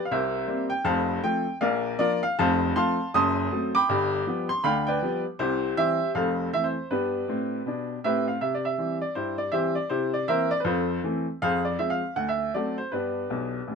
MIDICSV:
0, 0, Header, 1, 2, 480
1, 0, Start_track
1, 0, Key_signature, 0, "major"
1, 0, Tempo, 377121
1, 1098, Time_signature, 4, 2, 24, 8
1, 17501, End_track
2, 0, Start_track
2, 0, Title_t, "Upright piano"
2, 0, Program_c, 0, 0
2, 68, Note_on_c, 0, 77, 70
2, 137, Note_off_c, 0, 77, 0
2, 141, Note_on_c, 0, 48, 84
2, 146, Note_on_c, 0, 76, 82
2, 149, Note_on_c, 0, 36, 83
2, 154, Note_on_c, 0, 70, 58
2, 154, Note_on_c, 0, 72, 67
2, 548, Note_off_c, 0, 48, 0
2, 553, Note_off_c, 0, 36, 0
2, 604, Note_on_c, 0, 55, 56
2, 606, Note_on_c, 0, 58, 51
2, 611, Note_on_c, 0, 60, 61
2, 801, Note_off_c, 0, 76, 0
2, 869, Note_off_c, 0, 70, 0
2, 869, Note_off_c, 0, 72, 0
2, 873, Note_off_c, 0, 55, 0
2, 874, Note_off_c, 0, 58, 0
2, 878, Note_off_c, 0, 60, 0
2, 887, Note_on_c, 0, 79, 96
2, 1057, Note_off_c, 0, 79, 0
2, 1074, Note_on_c, 0, 41, 83
2, 1078, Note_on_c, 0, 81, 95
2, 1082, Note_on_c, 0, 29, 86
2, 1088, Note_on_c, 0, 77, 75
2, 1090, Note_on_c, 0, 72, 71
2, 1494, Note_off_c, 0, 41, 0
2, 1496, Note_off_c, 0, 81, 0
2, 1499, Note_off_c, 0, 29, 0
2, 1541, Note_off_c, 0, 77, 0
2, 1542, Note_off_c, 0, 72, 0
2, 1573, Note_on_c, 0, 57, 61
2, 1573, Note_on_c, 0, 79, 100
2, 1574, Note_on_c, 0, 53, 55
2, 1579, Note_on_c, 0, 60, 59
2, 1840, Note_off_c, 0, 57, 0
2, 1841, Note_off_c, 0, 53, 0
2, 1844, Note_off_c, 0, 60, 0
2, 1985, Note_off_c, 0, 79, 0
2, 2047, Note_on_c, 0, 77, 92
2, 2052, Note_on_c, 0, 46, 87
2, 2053, Note_on_c, 0, 34, 84
2, 2066, Note_on_c, 0, 74, 66
2, 2070, Note_on_c, 0, 70, 70
2, 2462, Note_off_c, 0, 77, 0
2, 2466, Note_off_c, 0, 34, 0
2, 2466, Note_off_c, 0, 46, 0
2, 2511, Note_off_c, 0, 74, 0
2, 2514, Note_off_c, 0, 70, 0
2, 2530, Note_on_c, 0, 74, 103
2, 2532, Note_on_c, 0, 53, 60
2, 2535, Note_on_c, 0, 58, 65
2, 2543, Note_on_c, 0, 62, 66
2, 2544, Note_on_c, 0, 65, 79
2, 2547, Note_on_c, 0, 70, 84
2, 2785, Note_off_c, 0, 74, 0
2, 2800, Note_off_c, 0, 53, 0
2, 2802, Note_off_c, 0, 58, 0
2, 2808, Note_off_c, 0, 62, 0
2, 2817, Note_off_c, 0, 65, 0
2, 2818, Note_off_c, 0, 70, 0
2, 2837, Note_on_c, 0, 77, 101
2, 2996, Note_off_c, 0, 77, 0
2, 3038, Note_on_c, 0, 81, 102
2, 3041, Note_on_c, 0, 29, 94
2, 3042, Note_on_c, 0, 41, 99
2, 3049, Note_on_c, 0, 77, 80
2, 3058, Note_on_c, 0, 72, 85
2, 3441, Note_off_c, 0, 81, 0
2, 3443, Note_off_c, 0, 29, 0
2, 3443, Note_off_c, 0, 41, 0
2, 3485, Note_off_c, 0, 77, 0
2, 3490, Note_off_c, 0, 72, 0
2, 3511, Note_on_c, 0, 84, 110
2, 3514, Note_on_c, 0, 53, 59
2, 3515, Note_on_c, 0, 57, 65
2, 3518, Note_on_c, 0, 81, 80
2, 3527, Note_on_c, 0, 60, 64
2, 3527, Note_on_c, 0, 77, 81
2, 3776, Note_off_c, 0, 53, 0
2, 3777, Note_off_c, 0, 57, 0
2, 3785, Note_off_c, 0, 60, 0
2, 3918, Note_off_c, 0, 84, 0
2, 3959, Note_off_c, 0, 81, 0
2, 3964, Note_off_c, 0, 77, 0
2, 4001, Note_on_c, 0, 87, 110
2, 4004, Note_on_c, 0, 30, 85
2, 4005, Note_on_c, 0, 42, 79
2, 4012, Note_on_c, 0, 81, 83
2, 4019, Note_on_c, 0, 84, 88
2, 4405, Note_off_c, 0, 30, 0
2, 4406, Note_off_c, 0, 42, 0
2, 4472, Note_on_c, 0, 54, 61
2, 4479, Note_on_c, 0, 57, 56
2, 4481, Note_on_c, 0, 60, 65
2, 4652, Note_off_c, 0, 87, 0
2, 4722, Note_off_c, 0, 81, 0
2, 4726, Note_off_c, 0, 84, 0
2, 4735, Note_off_c, 0, 54, 0
2, 4740, Note_off_c, 0, 57, 0
2, 4742, Note_off_c, 0, 60, 0
2, 4769, Note_on_c, 0, 86, 118
2, 4783, Note_on_c, 0, 83, 80
2, 4785, Note_on_c, 0, 79, 82
2, 4952, Note_on_c, 0, 31, 84
2, 4956, Note_on_c, 0, 43, 107
2, 5359, Note_off_c, 0, 31, 0
2, 5361, Note_off_c, 0, 43, 0
2, 5435, Note_on_c, 0, 53, 55
2, 5441, Note_on_c, 0, 55, 56
2, 5448, Note_on_c, 0, 59, 72
2, 5582, Note_off_c, 0, 86, 0
2, 5682, Note_off_c, 0, 83, 0
2, 5683, Note_off_c, 0, 79, 0
2, 5698, Note_off_c, 0, 53, 0
2, 5702, Note_off_c, 0, 55, 0
2, 5706, Note_off_c, 0, 59, 0
2, 5717, Note_on_c, 0, 84, 111
2, 5878, Note_off_c, 0, 84, 0
2, 5902, Note_on_c, 0, 83, 103
2, 5906, Note_on_c, 0, 38, 71
2, 5908, Note_on_c, 0, 50, 84
2, 5913, Note_on_c, 0, 77, 84
2, 5916, Note_on_c, 0, 79, 81
2, 6154, Note_off_c, 0, 83, 0
2, 6175, Note_off_c, 0, 79, 0
2, 6183, Note_off_c, 0, 77, 0
2, 6194, Note_on_c, 0, 79, 90
2, 6217, Note_on_c, 0, 71, 76
2, 6217, Note_on_c, 0, 74, 72
2, 6315, Note_off_c, 0, 38, 0
2, 6316, Note_off_c, 0, 50, 0
2, 6393, Note_on_c, 0, 53, 53
2, 6399, Note_on_c, 0, 55, 66
2, 6411, Note_on_c, 0, 59, 60
2, 6605, Note_off_c, 0, 79, 0
2, 6655, Note_off_c, 0, 53, 0
2, 6656, Note_off_c, 0, 71, 0
2, 6656, Note_off_c, 0, 74, 0
2, 6660, Note_off_c, 0, 55, 0
2, 6669, Note_off_c, 0, 59, 0
2, 6862, Note_on_c, 0, 72, 96
2, 6867, Note_on_c, 0, 36, 83
2, 6869, Note_on_c, 0, 48, 83
2, 6876, Note_on_c, 0, 64, 70
2, 6880, Note_on_c, 0, 67, 65
2, 7273, Note_off_c, 0, 72, 0
2, 7276, Note_off_c, 0, 36, 0
2, 7277, Note_off_c, 0, 48, 0
2, 7319, Note_off_c, 0, 64, 0
2, 7321, Note_off_c, 0, 67, 0
2, 7343, Note_on_c, 0, 52, 55
2, 7349, Note_on_c, 0, 76, 106
2, 7350, Note_on_c, 0, 55, 49
2, 7359, Note_on_c, 0, 60, 51
2, 7360, Note_on_c, 0, 72, 71
2, 7362, Note_on_c, 0, 67, 71
2, 7608, Note_off_c, 0, 52, 0
2, 7613, Note_off_c, 0, 55, 0
2, 7620, Note_off_c, 0, 60, 0
2, 7756, Note_off_c, 0, 76, 0
2, 7801, Note_off_c, 0, 72, 0
2, 7802, Note_off_c, 0, 67, 0
2, 7827, Note_on_c, 0, 29, 69
2, 7827, Note_on_c, 0, 77, 84
2, 7831, Note_on_c, 0, 41, 67
2, 7843, Note_on_c, 0, 69, 72
2, 7844, Note_on_c, 0, 72, 62
2, 8235, Note_off_c, 0, 29, 0
2, 8235, Note_off_c, 0, 77, 0
2, 8237, Note_off_c, 0, 41, 0
2, 8282, Note_off_c, 0, 69, 0
2, 8282, Note_off_c, 0, 72, 0
2, 8317, Note_on_c, 0, 52, 42
2, 8318, Note_on_c, 0, 76, 97
2, 8324, Note_on_c, 0, 57, 42
2, 8327, Note_on_c, 0, 60, 50
2, 8450, Note_on_c, 0, 72, 76
2, 8459, Note_off_c, 0, 76, 0
2, 8578, Note_off_c, 0, 52, 0
2, 8584, Note_off_c, 0, 57, 0
2, 8586, Note_off_c, 0, 60, 0
2, 8735, Note_off_c, 0, 72, 0
2, 8790, Note_on_c, 0, 43, 64
2, 8790, Note_on_c, 0, 71, 72
2, 8802, Note_on_c, 0, 62, 52
2, 8803, Note_on_c, 0, 67, 58
2, 8810, Note_on_c, 0, 59, 68
2, 9172, Note_off_c, 0, 43, 0
2, 9185, Note_off_c, 0, 59, 0
2, 9265, Note_on_c, 0, 45, 64
2, 9286, Note_on_c, 0, 60, 66
2, 9649, Note_off_c, 0, 45, 0
2, 9662, Note_off_c, 0, 60, 0
2, 9749, Note_on_c, 0, 47, 64
2, 9752, Note_off_c, 0, 62, 0
2, 9771, Note_on_c, 0, 62, 62
2, 10011, Note_off_c, 0, 71, 0
2, 10131, Note_off_c, 0, 47, 0
2, 10144, Note_off_c, 0, 62, 0
2, 10182, Note_off_c, 0, 67, 0
2, 10234, Note_on_c, 0, 45, 71
2, 10238, Note_on_c, 0, 76, 86
2, 10251, Note_on_c, 0, 67, 57
2, 10252, Note_on_c, 0, 71, 62
2, 10257, Note_on_c, 0, 60, 70
2, 10481, Note_off_c, 0, 76, 0
2, 10510, Note_off_c, 0, 67, 0
2, 10511, Note_off_c, 0, 71, 0
2, 10535, Note_on_c, 0, 77, 65
2, 10614, Note_off_c, 0, 45, 0
2, 10628, Note_off_c, 0, 60, 0
2, 10687, Note_off_c, 0, 77, 0
2, 10707, Note_on_c, 0, 76, 74
2, 10710, Note_on_c, 0, 48, 68
2, 10842, Note_off_c, 0, 76, 0
2, 10877, Note_on_c, 0, 74, 70
2, 11007, Note_off_c, 0, 74, 0
2, 11010, Note_on_c, 0, 76, 76
2, 11115, Note_off_c, 0, 48, 0
2, 11177, Note_on_c, 0, 52, 43
2, 11181, Note_on_c, 0, 55, 45
2, 11192, Note_on_c, 0, 60, 46
2, 11400, Note_off_c, 0, 76, 0
2, 11442, Note_off_c, 0, 52, 0
2, 11445, Note_off_c, 0, 55, 0
2, 11453, Note_off_c, 0, 60, 0
2, 11474, Note_on_c, 0, 74, 73
2, 11634, Note_off_c, 0, 74, 0
2, 11650, Note_on_c, 0, 72, 80
2, 11655, Note_on_c, 0, 43, 58
2, 11663, Note_on_c, 0, 67, 52
2, 11666, Note_on_c, 0, 64, 54
2, 11904, Note_off_c, 0, 72, 0
2, 11935, Note_off_c, 0, 67, 0
2, 11936, Note_off_c, 0, 64, 0
2, 11940, Note_on_c, 0, 74, 81
2, 12066, Note_off_c, 0, 43, 0
2, 12105, Note_off_c, 0, 74, 0
2, 12112, Note_on_c, 0, 76, 88
2, 12120, Note_on_c, 0, 55, 49
2, 12126, Note_on_c, 0, 52, 51
2, 12131, Note_on_c, 0, 60, 46
2, 12133, Note_on_c, 0, 67, 66
2, 12135, Note_on_c, 0, 72, 69
2, 12374, Note_off_c, 0, 76, 0
2, 12390, Note_off_c, 0, 55, 0
2, 12394, Note_off_c, 0, 52, 0
2, 12398, Note_off_c, 0, 60, 0
2, 12410, Note_off_c, 0, 67, 0
2, 12410, Note_off_c, 0, 72, 0
2, 12413, Note_on_c, 0, 74, 77
2, 12581, Note_off_c, 0, 74, 0
2, 12595, Note_on_c, 0, 72, 85
2, 12600, Note_on_c, 0, 48, 79
2, 12606, Note_on_c, 0, 67, 62
2, 12609, Note_on_c, 0, 64, 66
2, 12855, Note_off_c, 0, 72, 0
2, 12885, Note_off_c, 0, 67, 0
2, 12887, Note_off_c, 0, 64, 0
2, 12901, Note_on_c, 0, 74, 86
2, 13017, Note_off_c, 0, 48, 0
2, 13066, Note_off_c, 0, 74, 0
2, 13085, Note_on_c, 0, 76, 98
2, 13089, Note_on_c, 0, 52, 51
2, 13090, Note_on_c, 0, 60, 54
2, 13095, Note_on_c, 0, 72, 74
2, 13096, Note_on_c, 0, 58, 51
2, 13100, Note_on_c, 0, 70, 75
2, 13340, Note_off_c, 0, 76, 0
2, 13356, Note_off_c, 0, 52, 0
2, 13357, Note_off_c, 0, 60, 0
2, 13361, Note_off_c, 0, 58, 0
2, 13370, Note_off_c, 0, 72, 0
2, 13373, Note_off_c, 0, 70, 0
2, 13376, Note_on_c, 0, 74, 99
2, 13484, Note_off_c, 0, 74, 0
2, 13494, Note_on_c, 0, 71, 71
2, 13548, Note_on_c, 0, 72, 77
2, 13550, Note_on_c, 0, 41, 85
2, 13563, Note_on_c, 0, 65, 65
2, 13569, Note_on_c, 0, 69, 54
2, 13572, Note_off_c, 0, 71, 0
2, 13970, Note_off_c, 0, 72, 0
2, 13971, Note_off_c, 0, 41, 0
2, 14017, Note_off_c, 0, 65, 0
2, 14020, Note_off_c, 0, 69, 0
2, 14048, Note_on_c, 0, 52, 62
2, 14057, Note_on_c, 0, 60, 56
2, 14062, Note_on_c, 0, 57, 56
2, 14315, Note_off_c, 0, 52, 0
2, 14322, Note_off_c, 0, 60, 0
2, 14325, Note_off_c, 0, 57, 0
2, 14535, Note_on_c, 0, 77, 100
2, 14541, Note_on_c, 0, 41, 79
2, 14553, Note_on_c, 0, 68, 81
2, 14556, Note_on_c, 0, 72, 73
2, 14786, Note_off_c, 0, 77, 0
2, 14819, Note_off_c, 0, 68, 0
2, 14820, Note_off_c, 0, 72, 0
2, 14825, Note_on_c, 0, 74, 83
2, 14948, Note_off_c, 0, 41, 0
2, 14987, Note_off_c, 0, 74, 0
2, 15004, Note_on_c, 0, 76, 81
2, 15007, Note_on_c, 0, 53, 45
2, 15011, Note_on_c, 0, 56, 44
2, 15016, Note_on_c, 0, 60, 56
2, 15147, Note_on_c, 0, 77, 83
2, 15158, Note_off_c, 0, 76, 0
2, 15274, Note_off_c, 0, 53, 0
2, 15277, Note_off_c, 0, 56, 0
2, 15280, Note_off_c, 0, 60, 0
2, 15438, Note_off_c, 0, 77, 0
2, 15479, Note_on_c, 0, 38, 72
2, 15479, Note_on_c, 0, 78, 95
2, 15635, Note_off_c, 0, 78, 0
2, 15638, Note_on_c, 0, 76, 82
2, 15895, Note_off_c, 0, 38, 0
2, 15924, Note_off_c, 0, 76, 0
2, 15964, Note_on_c, 0, 54, 45
2, 15965, Note_on_c, 0, 74, 78
2, 15979, Note_on_c, 0, 57, 44
2, 15980, Note_on_c, 0, 60, 49
2, 15981, Note_on_c, 0, 66, 61
2, 15988, Note_on_c, 0, 69, 58
2, 16219, Note_off_c, 0, 74, 0
2, 16232, Note_off_c, 0, 54, 0
2, 16242, Note_off_c, 0, 57, 0
2, 16243, Note_off_c, 0, 60, 0
2, 16251, Note_off_c, 0, 66, 0
2, 16255, Note_off_c, 0, 69, 0
2, 16265, Note_on_c, 0, 72, 74
2, 16426, Note_off_c, 0, 72, 0
2, 16441, Note_on_c, 0, 71, 70
2, 16453, Note_on_c, 0, 43, 59
2, 16458, Note_on_c, 0, 62, 55
2, 16462, Note_on_c, 0, 67, 48
2, 16472, Note_on_c, 0, 59, 59
2, 16838, Note_off_c, 0, 43, 0
2, 16850, Note_off_c, 0, 59, 0
2, 16929, Note_on_c, 0, 47, 64
2, 16933, Note_on_c, 0, 35, 57
2, 17292, Note_off_c, 0, 47, 0
2, 17294, Note_off_c, 0, 35, 0
2, 17407, Note_on_c, 0, 33, 50
2, 17411, Note_on_c, 0, 45, 55
2, 17501, Note_off_c, 0, 33, 0
2, 17501, Note_off_c, 0, 45, 0
2, 17501, Note_off_c, 0, 62, 0
2, 17501, Note_off_c, 0, 67, 0
2, 17501, Note_off_c, 0, 71, 0
2, 17501, End_track
0, 0, End_of_file